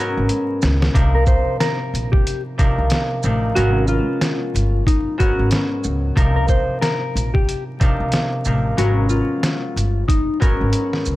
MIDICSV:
0, 0, Header, 1, 5, 480
1, 0, Start_track
1, 0, Tempo, 652174
1, 701, Time_signature, 4, 2, 24, 8
1, 8214, End_track
2, 0, Start_track
2, 0, Title_t, "Clean electric guitar"
2, 0, Program_c, 0, 27
2, 0, Note_on_c, 0, 66, 93
2, 195, Note_off_c, 0, 66, 0
2, 845, Note_on_c, 0, 70, 84
2, 931, Note_off_c, 0, 70, 0
2, 939, Note_on_c, 0, 72, 77
2, 1156, Note_off_c, 0, 72, 0
2, 1179, Note_on_c, 0, 70, 83
2, 1540, Note_off_c, 0, 70, 0
2, 1559, Note_on_c, 0, 67, 80
2, 1777, Note_off_c, 0, 67, 0
2, 2615, Note_on_c, 0, 66, 111
2, 2833, Note_off_c, 0, 66, 0
2, 2861, Note_on_c, 0, 65, 90
2, 3551, Note_off_c, 0, 65, 0
2, 3582, Note_on_c, 0, 63, 85
2, 3797, Note_off_c, 0, 63, 0
2, 3819, Note_on_c, 0, 66, 88
2, 4036, Note_off_c, 0, 66, 0
2, 4681, Note_on_c, 0, 70, 77
2, 4769, Note_off_c, 0, 70, 0
2, 4780, Note_on_c, 0, 72, 88
2, 4996, Note_off_c, 0, 72, 0
2, 5015, Note_on_c, 0, 70, 77
2, 5378, Note_off_c, 0, 70, 0
2, 5400, Note_on_c, 0, 67, 79
2, 5618, Note_off_c, 0, 67, 0
2, 6461, Note_on_c, 0, 66, 105
2, 6677, Note_off_c, 0, 66, 0
2, 6697, Note_on_c, 0, 65, 87
2, 7389, Note_off_c, 0, 65, 0
2, 7419, Note_on_c, 0, 63, 91
2, 7635, Note_off_c, 0, 63, 0
2, 7657, Note_on_c, 0, 66, 91
2, 7875, Note_off_c, 0, 66, 0
2, 8214, End_track
3, 0, Start_track
3, 0, Title_t, "Harp"
3, 0, Program_c, 1, 46
3, 0, Note_on_c, 1, 44, 99
3, 0, Note_on_c, 1, 54, 87
3, 0, Note_on_c, 1, 56, 102
3, 0, Note_on_c, 1, 59, 84
3, 0, Note_on_c, 1, 61, 86
3, 0, Note_on_c, 1, 70, 99
3, 689, Note_on_c, 1, 48, 96
3, 693, Note_on_c, 1, 53, 92
3, 693, Note_on_c, 1, 62, 85
3, 698, Note_off_c, 1, 70, 0
3, 701, Note_on_c, 1, 63, 86
3, 701, Note_on_c, 1, 70, 108
3, 733, Note_off_c, 1, 59, 0
3, 733, Note_off_c, 1, 61, 0
3, 737, Note_off_c, 1, 44, 0
3, 737, Note_off_c, 1, 56, 0
3, 738, Note_off_c, 1, 54, 0
3, 1889, Note_off_c, 1, 48, 0
3, 1892, Note_off_c, 1, 53, 0
3, 1897, Note_on_c, 1, 48, 90
3, 1899, Note_off_c, 1, 62, 0
3, 1902, Note_on_c, 1, 53, 82
3, 1902, Note_on_c, 1, 62, 87
3, 1905, Note_off_c, 1, 63, 0
3, 1907, Note_off_c, 1, 70, 0
3, 1908, Note_on_c, 1, 63, 90
3, 1910, Note_on_c, 1, 70, 93
3, 2351, Note_off_c, 1, 62, 0
3, 2353, Note_off_c, 1, 63, 0
3, 2354, Note_off_c, 1, 70, 0
3, 2373, Note_off_c, 1, 48, 0
3, 2376, Note_off_c, 1, 53, 0
3, 2382, Note_on_c, 1, 48, 83
3, 2383, Note_on_c, 1, 53, 72
3, 2390, Note_on_c, 1, 62, 74
3, 2391, Note_on_c, 1, 63, 73
3, 2394, Note_on_c, 1, 70, 82
3, 2609, Note_off_c, 1, 62, 0
3, 2610, Note_off_c, 1, 63, 0
3, 2612, Note_off_c, 1, 70, 0
3, 2617, Note_on_c, 1, 54, 92
3, 2617, Note_on_c, 1, 56, 99
3, 2621, Note_on_c, 1, 59, 83
3, 2623, Note_on_c, 1, 61, 88
3, 2628, Note_on_c, 1, 70, 99
3, 2657, Note_off_c, 1, 48, 0
3, 2657, Note_off_c, 1, 53, 0
3, 3805, Note_off_c, 1, 54, 0
3, 3810, Note_on_c, 1, 44, 101
3, 3812, Note_off_c, 1, 59, 0
3, 3815, Note_on_c, 1, 54, 90
3, 3815, Note_on_c, 1, 59, 86
3, 3820, Note_off_c, 1, 61, 0
3, 3821, Note_off_c, 1, 70, 0
3, 3823, Note_on_c, 1, 61, 88
3, 3823, Note_on_c, 1, 70, 101
3, 4530, Note_on_c, 1, 48, 93
3, 4530, Note_on_c, 1, 53, 89
3, 4537, Note_on_c, 1, 62, 81
3, 4538, Note_on_c, 1, 63, 87
3, 4539, Note_off_c, 1, 70, 0
3, 4542, Note_on_c, 1, 70, 110
3, 4574, Note_off_c, 1, 59, 0
3, 4574, Note_off_c, 1, 61, 0
3, 4577, Note_off_c, 1, 44, 0
3, 4577, Note_off_c, 1, 54, 0
3, 4578, Note_off_c, 1, 56, 0
3, 5729, Note_off_c, 1, 48, 0
3, 5733, Note_off_c, 1, 53, 0
3, 5738, Note_on_c, 1, 48, 91
3, 5739, Note_on_c, 1, 53, 84
3, 5742, Note_off_c, 1, 63, 0
3, 5744, Note_off_c, 1, 62, 0
3, 5745, Note_on_c, 1, 63, 88
3, 5746, Note_on_c, 1, 62, 87
3, 5749, Note_off_c, 1, 70, 0
3, 5752, Note_on_c, 1, 70, 94
3, 6192, Note_off_c, 1, 62, 0
3, 6193, Note_off_c, 1, 63, 0
3, 6194, Note_off_c, 1, 70, 0
3, 6213, Note_off_c, 1, 48, 0
3, 6216, Note_off_c, 1, 53, 0
3, 6222, Note_on_c, 1, 48, 83
3, 6225, Note_on_c, 1, 53, 73
3, 6226, Note_on_c, 1, 62, 73
3, 6233, Note_on_c, 1, 63, 72
3, 6235, Note_on_c, 1, 70, 84
3, 6449, Note_off_c, 1, 62, 0
3, 6450, Note_off_c, 1, 63, 0
3, 6452, Note_off_c, 1, 70, 0
3, 6454, Note_on_c, 1, 56, 98
3, 6458, Note_on_c, 1, 54, 92
3, 6459, Note_on_c, 1, 59, 81
3, 6466, Note_on_c, 1, 61, 90
3, 6466, Note_on_c, 1, 70, 98
3, 6497, Note_off_c, 1, 48, 0
3, 6498, Note_off_c, 1, 53, 0
3, 7646, Note_off_c, 1, 54, 0
3, 7652, Note_on_c, 1, 44, 97
3, 7653, Note_off_c, 1, 59, 0
3, 7655, Note_on_c, 1, 54, 88
3, 7656, Note_on_c, 1, 59, 83
3, 7659, Note_off_c, 1, 61, 0
3, 7661, Note_off_c, 1, 70, 0
3, 7662, Note_on_c, 1, 61, 88
3, 7664, Note_on_c, 1, 70, 108
3, 8214, Note_off_c, 1, 44, 0
3, 8214, Note_off_c, 1, 54, 0
3, 8214, Note_off_c, 1, 56, 0
3, 8214, Note_off_c, 1, 59, 0
3, 8214, Note_off_c, 1, 61, 0
3, 8214, Note_off_c, 1, 70, 0
3, 8214, End_track
4, 0, Start_track
4, 0, Title_t, "Upright bass"
4, 0, Program_c, 2, 32
4, 128, Note_on_c, 2, 32, 92
4, 203, Note_off_c, 2, 32, 0
4, 465, Note_on_c, 2, 37, 93
4, 653, Note_off_c, 2, 37, 0
4, 702, Note_on_c, 2, 36, 107
4, 1004, Note_off_c, 2, 36, 0
4, 1425, Note_on_c, 2, 34, 87
4, 1613, Note_off_c, 2, 34, 0
4, 2049, Note_on_c, 2, 36, 84
4, 2123, Note_off_c, 2, 36, 0
4, 2385, Note_on_c, 2, 33, 103
4, 2573, Note_off_c, 2, 33, 0
4, 2626, Note_on_c, 2, 32, 108
4, 2927, Note_off_c, 2, 32, 0
4, 3345, Note_on_c, 2, 31, 89
4, 3533, Note_off_c, 2, 31, 0
4, 3969, Note_on_c, 2, 32, 92
4, 4043, Note_off_c, 2, 32, 0
4, 4306, Note_on_c, 2, 37, 94
4, 4493, Note_off_c, 2, 37, 0
4, 4543, Note_on_c, 2, 36, 105
4, 4844, Note_off_c, 2, 36, 0
4, 5265, Note_on_c, 2, 34, 92
4, 5453, Note_off_c, 2, 34, 0
4, 5889, Note_on_c, 2, 36, 82
4, 5963, Note_off_c, 2, 36, 0
4, 6225, Note_on_c, 2, 33, 100
4, 6413, Note_off_c, 2, 33, 0
4, 6464, Note_on_c, 2, 32, 103
4, 6765, Note_off_c, 2, 32, 0
4, 7186, Note_on_c, 2, 31, 93
4, 7373, Note_off_c, 2, 31, 0
4, 7809, Note_on_c, 2, 32, 89
4, 7883, Note_off_c, 2, 32, 0
4, 8146, Note_on_c, 2, 37, 93
4, 8214, Note_off_c, 2, 37, 0
4, 8214, End_track
5, 0, Start_track
5, 0, Title_t, "Drums"
5, 215, Note_on_c, 9, 42, 73
5, 288, Note_off_c, 9, 42, 0
5, 455, Note_on_c, 9, 82, 64
5, 463, Note_on_c, 9, 38, 105
5, 529, Note_off_c, 9, 82, 0
5, 536, Note_off_c, 9, 38, 0
5, 606, Note_on_c, 9, 38, 97
5, 680, Note_off_c, 9, 38, 0
5, 700, Note_on_c, 9, 36, 121
5, 702, Note_on_c, 9, 42, 97
5, 773, Note_off_c, 9, 36, 0
5, 776, Note_off_c, 9, 42, 0
5, 930, Note_on_c, 9, 82, 58
5, 934, Note_on_c, 9, 36, 96
5, 1003, Note_off_c, 9, 82, 0
5, 1008, Note_off_c, 9, 36, 0
5, 1181, Note_on_c, 9, 38, 113
5, 1183, Note_on_c, 9, 42, 84
5, 1255, Note_off_c, 9, 38, 0
5, 1257, Note_off_c, 9, 42, 0
5, 1434, Note_on_c, 9, 42, 59
5, 1434, Note_on_c, 9, 82, 60
5, 1508, Note_off_c, 9, 42, 0
5, 1508, Note_off_c, 9, 82, 0
5, 1567, Note_on_c, 9, 36, 99
5, 1641, Note_off_c, 9, 36, 0
5, 1669, Note_on_c, 9, 42, 97
5, 1743, Note_off_c, 9, 42, 0
5, 1907, Note_on_c, 9, 42, 52
5, 1907, Note_on_c, 9, 82, 51
5, 1909, Note_on_c, 9, 36, 101
5, 1981, Note_off_c, 9, 42, 0
5, 1981, Note_off_c, 9, 82, 0
5, 1982, Note_off_c, 9, 36, 0
5, 2134, Note_on_c, 9, 42, 75
5, 2147, Note_on_c, 9, 38, 107
5, 2208, Note_off_c, 9, 42, 0
5, 2220, Note_off_c, 9, 38, 0
5, 2376, Note_on_c, 9, 82, 62
5, 2450, Note_off_c, 9, 82, 0
5, 2623, Note_on_c, 9, 42, 98
5, 2696, Note_off_c, 9, 42, 0
5, 2851, Note_on_c, 9, 82, 57
5, 2924, Note_off_c, 9, 82, 0
5, 3102, Note_on_c, 9, 38, 116
5, 3104, Note_on_c, 9, 42, 83
5, 3175, Note_off_c, 9, 38, 0
5, 3178, Note_off_c, 9, 42, 0
5, 3354, Note_on_c, 9, 42, 61
5, 3354, Note_on_c, 9, 82, 60
5, 3428, Note_off_c, 9, 42, 0
5, 3428, Note_off_c, 9, 82, 0
5, 3582, Note_on_c, 9, 36, 91
5, 3590, Note_on_c, 9, 42, 93
5, 3656, Note_off_c, 9, 36, 0
5, 3664, Note_off_c, 9, 42, 0
5, 3828, Note_on_c, 9, 42, 54
5, 3828, Note_on_c, 9, 82, 52
5, 3829, Note_on_c, 9, 36, 99
5, 3901, Note_off_c, 9, 42, 0
5, 3901, Note_off_c, 9, 82, 0
5, 3902, Note_off_c, 9, 36, 0
5, 4054, Note_on_c, 9, 42, 76
5, 4066, Note_on_c, 9, 38, 103
5, 4128, Note_off_c, 9, 42, 0
5, 4140, Note_off_c, 9, 38, 0
5, 4296, Note_on_c, 9, 82, 62
5, 4370, Note_off_c, 9, 82, 0
5, 4540, Note_on_c, 9, 36, 120
5, 4543, Note_on_c, 9, 42, 94
5, 4614, Note_off_c, 9, 36, 0
5, 4617, Note_off_c, 9, 42, 0
5, 4771, Note_on_c, 9, 82, 60
5, 4775, Note_on_c, 9, 36, 98
5, 4844, Note_off_c, 9, 82, 0
5, 4848, Note_off_c, 9, 36, 0
5, 5022, Note_on_c, 9, 38, 112
5, 5025, Note_on_c, 9, 42, 81
5, 5096, Note_off_c, 9, 38, 0
5, 5098, Note_off_c, 9, 42, 0
5, 5275, Note_on_c, 9, 42, 60
5, 5275, Note_on_c, 9, 82, 59
5, 5348, Note_off_c, 9, 42, 0
5, 5348, Note_off_c, 9, 82, 0
5, 5407, Note_on_c, 9, 36, 100
5, 5481, Note_off_c, 9, 36, 0
5, 5510, Note_on_c, 9, 42, 92
5, 5584, Note_off_c, 9, 42, 0
5, 5748, Note_on_c, 9, 42, 53
5, 5748, Note_on_c, 9, 82, 52
5, 5749, Note_on_c, 9, 36, 103
5, 5821, Note_off_c, 9, 42, 0
5, 5821, Note_off_c, 9, 82, 0
5, 5823, Note_off_c, 9, 36, 0
5, 5975, Note_on_c, 9, 42, 77
5, 5987, Note_on_c, 9, 38, 105
5, 6049, Note_off_c, 9, 42, 0
5, 6061, Note_off_c, 9, 38, 0
5, 6217, Note_on_c, 9, 82, 63
5, 6291, Note_off_c, 9, 82, 0
5, 6463, Note_on_c, 9, 42, 98
5, 6537, Note_off_c, 9, 42, 0
5, 6691, Note_on_c, 9, 82, 58
5, 6765, Note_off_c, 9, 82, 0
5, 6942, Note_on_c, 9, 38, 115
5, 6944, Note_on_c, 9, 42, 79
5, 7015, Note_off_c, 9, 38, 0
5, 7018, Note_off_c, 9, 42, 0
5, 7194, Note_on_c, 9, 42, 60
5, 7194, Note_on_c, 9, 82, 60
5, 7267, Note_off_c, 9, 42, 0
5, 7267, Note_off_c, 9, 82, 0
5, 7423, Note_on_c, 9, 36, 92
5, 7431, Note_on_c, 9, 42, 92
5, 7496, Note_off_c, 9, 36, 0
5, 7504, Note_off_c, 9, 42, 0
5, 7668, Note_on_c, 9, 42, 51
5, 7668, Note_on_c, 9, 82, 53
5, 7670, Note_on_c, 9, 36, 97
5, 7742, Note_off_c, 9, 42, 0
5, 7742, Note_off_c, 9, 82, 0
5, 7743, Note_off_c, 9, 36, 0
5, 7895, Note_on_c, 9, 42, 75
5, 7969, Note_off_c, 9, 42, 0
5, 8047, Note_on_c, 9, 38, 67
5, 8120, Note_off_c, 9, 38, 0
5, 8136, Note_on_c, 9, 82, 64
5, 8209, Note_off_c, 9, 82, 0
5, 8214, End_track
0, 0, End_of_file